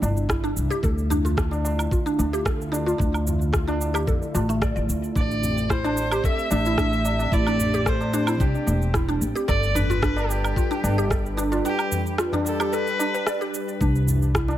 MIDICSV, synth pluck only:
0, 0, Header, 1, 2, 480
1, 0, Start_track
1, 0, Tempo, 540541
1, 743, Time_signature, 4, 2, 24, 8
1, 12945, End_track
2, 0, Start_track
2, 0, Title_t, "Synth pluck"
2, 0, Program_c, 0, 84
2, 0, Note_on_c, 0, 62, 74
2, 252, Note_off_c, 0, 62, 0
2, 258, Note_on_c, 0, 64, 81
2, 381, Note_off_c, 0, 64, 0
2, 388, Note_on_c, 0, 62, 97
2, 616, Note_off_c, 0, 62, 0
2, 626, Note_on_c, 0, 67, 97
2, 736, Note_off_c, 0, 67, 0
2, 741, Note_on_c, 0, 69, 79
2, 863, Note_off_c, 0, 69, 0
2, 980, Note_on_c, 0, 62, 99
2, 1096, Note_off_c, 0, 62, 0
2, 1108, Note_on_c, 0, 65, 69
2, 1211, Note_off_c, 0, 65, 0
2, 1225, Note_on_c, 0, 62, 79
2, 1693, Note_off_c, 0, 62, 0
2, 1705, Note_on_c, 0, 65, 72
2, 1825, Note_off_c, 0, 65, 0
2, 1829, Note_on_c, 0, 62, 101
2, 2057, Note_off_c, 0, 62, 0
2, 2071, Note_on_c, 0, 67, 92
2, 2178, Note_off_c, 0, 67, 0
2, 2182, Note_on_c, 0, 69, 75
2, 2303, Note_off_c, 0, 69, 0
2, 2413, Note_on_c, 0, 62, 102
2, 2533, Note_off_c, 0, 62, 0
2, 2543, Note_on_c, 0, 65, 76
2, 2649, Note_off_c, 0, 65, 0
2, 2649, Note_on_c, 0, 62, 79
2, 3125, Note_off_c, 0, 62, 0
2, 3131, Note_on_c, 0, 65, 83
2, 3258, Note_off_c, 0, 65, 0
2, 3264, Note_on_c, 0, 62, 96
2, 3494, Note_off_c, 0, 62, 0
2, 3499, Note_on_c, 0, 67, 100
2, 3612, Note_off_c, 0, 67, 0
2, 3619, Note_on_c, 0, 69, 79
2, 3742, Note_off_c, 0, 69, 0
2, 3861, Note_on_c, 0, 65, 76
2, 3983, Note_off_c, 0, 65, 0
2, 3988, Note_on_c, 0, 57, 97
2, 4091, Note_off_c, 0, 57, 0
2, 4099, Note_on_c, 0, 74, 97
2, 4216, Note_off_c, 0, 74, 0
2, 4225, Note_on_c, 0, 74, 69
2, 4335, Note_off_c, 0, 74, 0
2, 4580, Note_on_c, 0, 62, 80
2, 5051, Note_off_c, 0, 62, 0
2, 5062, Note_on_c, 0, 64, 87
2, 5184, Note_off_c, 0, 64, 0
2, 5191, Note_on_c, 0, 62, 99
2, 5418, Note_off_c, 0, 62, 0
2, 5434, Note_on_c, 0, 67, 101
2, 5540, Note_off_c, 0, 67, 0
2, 5551, Note_on_c, 0, 69, 76
2, 5668, Note_off_c, 0, 69, 0
2, 5788, Note_on_c, 0, 62, 95
2, 5900, Note_off_c, 0, 62, 0
2, 5917, Note_on_c, 0, 64, 73
2, 6016, Note_off_c, 0, 64, 0
2, 6027, Note_on_c, 0, 62, 83
2, 6494, Note_off_c, 0, 62, 0
2, 6508, Note_on_c, 0, 64, 80
2, 6626, Note_off_c, 0, 64, 0
2, 6637, Note_on_c, 0, 62, 97
2, 6861, Note_off_c, 0, 62, 0
2, 6873, Note_on_c, 0, 67, 96
2, 6979, Note_off_c, 0, 67, 0
2, 6986, Note_on_c, 0, 69, 78
2, 7105, Note_off_c, 0, 69, 0
2, 7223, Note_on_c, 0, 62, 100
2, 7338, Note_off_c, 0, 62, 0
2, 7349, Note_on_c, 0, 64, 73
2, 7452, Note_off_c, 0, 64, 0
2, 7463, Note_on_c, 0, 62, 81
2, 7932, Note_off_c, 0, 62, 0
2, 7943, Note_on_c, 0, 64, 77
2, 8064, Note_off_c, 0, 64, 0
2, 8068, Note_on_c, 0, 62, 103
2, 8296, Note_off_c, 0, 62, 0
2, 8307, Note_on_c, 0, 67, 96
2, 8416, Note_off_c, 0, 67, 0
2, 8419, Note_on_c, 0, 69, 85
2, 8542, Note_off_c, 0, 69, 0
2, 8660, Note_on_c, 0, 62, 94
2, 8776, Note_off_c, 0, 62, 0
2, 8790, Note_on_c, 0, 65, 77
2, 8892, Note_off_c, 0, 65, 0
2, 8904, Note_on_c, 0, 62, 85
2, 9373, Note_off_c, 0, 62, 0
2, 9386, Note_on_c, 0, 65, 78
2, 9505, Note_off_c, 0, 65, 0
2, 9508, Note_on_c, 0, 62, 103
2, 9737, Note_off_c, 0, 62, 0
2, 9751, Note_on_c, 0, 67, 107
2, 9858, Note_off_c, 0, 67, 0
2, 9865, Note_on_c, 0, 69, 82
2, 9985, Note_off_c, 0, 69, 0
2, 10101, Note_on_c, 0, 62, 102
2, 10216, Note_off_c, 0, 62, 0
2, 10229, Note_on_c, 0, 65, 76
2, 10331, Note_off_c, 0, 65, 0
2, 10345, Note_on_c, 0, 62, 80
2, 10813, Note_off_c, 0, 62, 0
2, 10825, Note_on_c, 0, 65, 81
2, 10945, Note_off_c, 0, 65, 0
2, 10952, Note_on_c, 0, 62, 96
2, 11178, Note_off_c, 0, 62, 0
2, 11188, Note_on_c, 0, 67, 102
2, 11297, Note_off_c, 0, 67, 0
2, 11305, Note_on_c, 0, 69, 76
2, 11425, Note_off_c, 0, 69, 0
2, 11544, Note_on_c, 0, 62, 75
2, 11658, Note_off_c, 0, 62, 0
2, 11673, Note_on_c, 0, 71, 77
2, 11773, Note_off_c, 0, 71, 0
2, 11781, Note_on_c, 0, 74, 82
2, 11903, Note_off_c, 0, 74, 0
2, 11908, Note_on_c, 0, 67, 76
2, 12017, Note_off_c, 0, 67, 0
2, 12265, Note_on_c, 0, 62, 86
2, 12733, Note_off_c, 0, 62, 0
2, 12743, Note_on_c, 0, 64, 82
2, 12863, Note_on_c, 0, 62, 100
2, 12864, Note_off_c, 0, 64, 0
2, 12945, Note_off_c, 0, 62, 0
2, 12945, End_track
0, 0, End_of_file